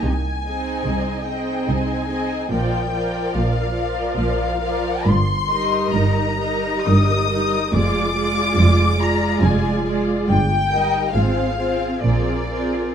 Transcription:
X:1
M:3/4
L:1/8
Q:1/4=71
K:Eb
V:1 name="Violin section"
a3 g a2 | g2 f2 f2 | c'2 b2 e'2 | d'3 b a z |
g2 f2 d2 |]
V:2 name="Violin section"
z [Ae]2 [Ae]2 [Ae] | [Bd] [Bd]2 [Bd]2 [Bd] | z [Be]2 [Be]2 [Be] | [Ad] [Ad]2 [Ad]2 [Ad] |
z [Be] [Ac] [Ac] [AB] [AB] |]
V:3 name="Viola section"
z [CE]2 [CE]2 [CE] | [F,F] [F,F]2 [F,F]2 [F,F] | z [G,E]2 [G,E]2 [G,E] | [A,F] [A,F]2 [A,F]2 [A,F] |
z [G,E] [CF] [CF] [CF] [CF] |]
V:4 name="Cello section" clef=bass
C,2 C,2 C,2 | B,,2 B,,2 B,,2 | G,,2 G,,2 G,,2 | F,,2 F,,2 F,,2 |
G,,2 A,,2 B,,2 |]
V:5 name="Double bass section" clef=bass
C,,2 C,,2 C,,2 | B,,,2 B,,,2 B,,,2 | G,,,2 G,,,2 G,,,2 | F,,,2 F,,,2 F,,,2 |
G,,,2 A,,,2 B,,,2 |]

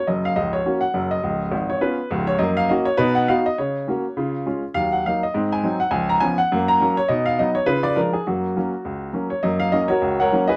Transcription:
X:1
M:4/4
L:1/8
Q:"Swing" 1/4=205
K:F#
V:1 name="Upright piano"
d e d c2 f2 d- | d3 c B2 z c | d e d c B f e d | c6- c z |
e f e d2 g2 f | g a g f2 a2 c | d e d c B =d A G | F6 z c |
d e d [FAc]2 [Acf]2 [GBd] |]
V:2 name="Upright piano"
[F,,,F,,]2 [C,,,C,,]2 [A,CF]2 [F,,,F,,]2 | [C,,,C,,]2 G,,,2 [B,CE]2 [C,,,C,,]2 | [F,,A,]2 [A,CF]2 [B,,D]2 [B,DF]2 | C,2 [A,CF]2 [C,E]2 [G,CE]2 |
[D,,F,]2 [F,A,D]2 [G,,^B,]2 [F,B,D]2 | [C,,E,]2 [E,B,C]2 [F,,A,]2 [F,A,C]2 | [B,,D]2 [F,B,D]2 [C,E]2 [E,G,=D]2 | [F,,A,]2 [F,A,C]2 C,,2 [F,A,C]2 |
[F,,A,]2 [F,A,C]2 C,,2 [F,A,C]2 |]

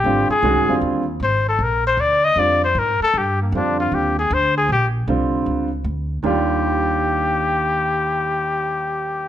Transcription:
X:1
M:4/4
L:1/8
Q:"Swing" 1/4=155
K:Eb
V:1 name="Trumpet"
G A3 z2 c =A | B c d e d c B =A | G B, D F G A c A | G z6 z |
G8- | G8 |]
V:2 name="Grand piano" clef=bass
[D,G,CF] z [E,A,_D_G] [=D,=G,CF]2 z3 | z4 [D,G,CF] z3 | z2 [D,G,CF]3 z3 | z2 [D,G,CF]3 z3 |
[E,,E,G,DF]8- | [E,,E,G,DF]8 |]
V:3 name="Upright bass" clef=bass
A,,, z (3C,, A,,, F,,, E,,2 A,,,2 | B,,,2 D,,2 F,,2 A,, z | G,,2 F,,2 E,,2 D,,2 | B,,,2 C,,2 _D,,2 =D,,2 |
E,,8- | E,,8 |]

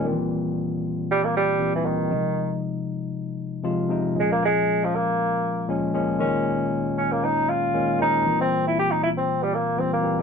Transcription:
X:1
M:4/4
L:1/16
Q:1/4=117
K:Cphr
V:1 name="Bassoon"
z8 G, B, G,3 =E, _E,2- | E,4 z12 | A, B, A,3 F, B,6 z4 | z6 D B, E2 F4 E2- |
E C2 =E G _E =E C2 G, B,2 C B,2 z |]
V:2 name="Tine electric piano" clef=bass
[B,,E,=E,G,C]6 z6 [B,,E,G,C]2 [B,,E,G,C]2 | [C,F,A,E]6 z6 [C,F,A,F]2 [C,F,A,E]2 | [B,,F,A,D]6 z6 [B,,F,A,D]2 [B,,F,A,D]2 | [B,,E,A,D]6 z6 [B,,E,A,D]2 [B,,E,A,D]2 |
[B,,=E,G,C]6 z6 [B,,E,G,C]2 [B,,E,G,C]2 |]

